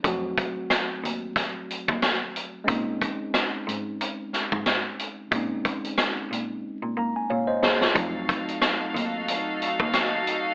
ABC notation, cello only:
X:1
M:4/4
L:1/16
Q:"Swing 16ths" 1/4=91
K:Bbm
V:1 name="Cello" clef=bass
F,,2 z4 E,,2 z3 E,,2 z3 | B,,2 z4 A,,2 z3 A,,2 z3 | B,,2 z4 B,,2 z B,, B,2 B,,2 E,,2 | F,,2 z4 E,,2 z3 E,,2 z3 |]